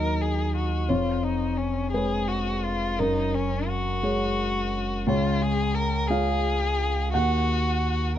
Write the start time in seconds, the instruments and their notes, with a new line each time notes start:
Already playing: felt piano D#2 F#3 D#4 A#4 D#5, sub bass D#2, violin A#4
0.21 violin G#4
0.56 violin F#4
0.89 sub bass F1, felt piano F2 C#5, violin F4
1.24 violin D#4
1.57 violin C#4
1.92 felt piano G#3 G#4 B4 C#5, violin G#4
2.28 violin F#4
2.65 violin F4
2.99 sub bass F#1, felt piano F#2 A#4, violin D#4
3.34 violin C#4
3.68 violin F#4
4.03 felt piano G#3 G#4 C#5
5.07 felt piano C#2 C#5, sub bass C#2, violin F4
5.43 violin G#4
5.75 violin A#4
6.08 felt piano G#3 F4 C#5 F5, violin G#4
7.13 felt piano D#2 F#5, sub bass D#2, violin F#4